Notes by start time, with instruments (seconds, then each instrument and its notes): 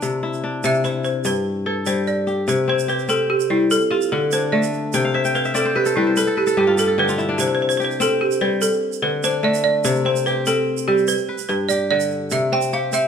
Already playing: kora D4 E4
0.02 kora C3, shaker
0.23 kora E4
0.33 shaker
0.44 kora D4
0.64 kora C3, balafon E5, shaker
0.74 shaker
0.84 kora E4, balafon C5, shaker
1.04 balafon C5, shaker
1.25 kora G2, balafon B4, shaker
1.35 shaker
1.66 kora A4, balafon B4
1.86 kora G3, balafon C5, shaker
2.07 balafon D5, shaker
2.27 kora G4, shaker
2.48 kora C3, balafon C5, shaker
2.68 kora C4, balafon C5
2.79 shaker
2.88 kora G4, balafon B4, shaker
2.99 shaker
3.09 kora C4, balafon A4, shaker
3.30 balafon G4
3.40 shaker
3.50 kora G3, balafon E4
3.71 balafon A4, shaker
3.81 shaker
3.91 kora F4, balafon G4
4.01 shaker
4.12 kora D3, balafon A4
4.32 kora D4, balafon C5, shaker
4.52 kora A3, balafon D5
4.63 shaker
4.73 shaker
4.93 kora C3 G5, balafon C5, shaker
5.05 kora F5
5.14 balafon C5, kora E5
5.25 kora G5, shaker
5.35 balafon B4, kora F5, shaker
5.45 kora E5, shaker
5.54 kora C4 D5, balafon A4, shaker
5.65 kora C5
5.76 balafon G4, kora B4
5.86 kora A4, shaker
5.96 kora G3 B4, balafon E4
6.07 kora C5
6.17 balafon A4, kora B4, shaker
6.27 kora A4
6.37 balafon G4, kora B4
6.47 kora A4, shaker
6.57 kora G2 G4, balafon G4
6.67 kora F4
6.77 kora G4, balafon A4, shaker
6.87 kora A4
6.98 kora D3 G4, balafon B4
7.08 kora F4, shaker
7.18 kora E4, shaker
7.29 kora D4
7.38 kora C3, balafon C5, shaker
7.48 balafon C5
7.55 balafon C5
7.62 balafon C5
7.69 balafon C5, shaker
7.77 kora G4, balafon C5, shaker
7.85 balafon C5
7.91 shaker
8.00 kora C4, balafon A4, shaker
8.21 balafon G4
8.31 shaker
8.41 kora G3, balafon B4
8.62 balafon A4, shaker
8.73 shaker
8.93 shaker
9.02 kora D3, balafon B4
9.23 kora D4, balafon C5, shaker
9.43 kora A3, balafon D5
9.54 shaker
9.64 balafon D5
9.84 kora C3, balafon C5, shaker
9.95 shaker
10.05 kora C4, balafon C5
10.16 shaker
10.26 kora G4, balafon B4, shaker
10.46 kora C4, balafon A4, shaker
10.77 shaker
10.88 kora G3, balafon G4
10.98 shaker
11.08 balafon B4, shaker
11.18 shaker
11.29 kora B4
11.38 shaker
11.49 kora G2, balafon B4, shaker
11.69 kora G4, balafon D5, shaker
11.91 kora D3, balafon D5
12.00 shaker
12.11 shaker
12.31 kora C3, balafon E5, shaker
12.52 kora C4, balafon G5
12.61 shaker
12.72 kora G4, balafon F5, shaker
12.93 kora C4, balafon E5, shaker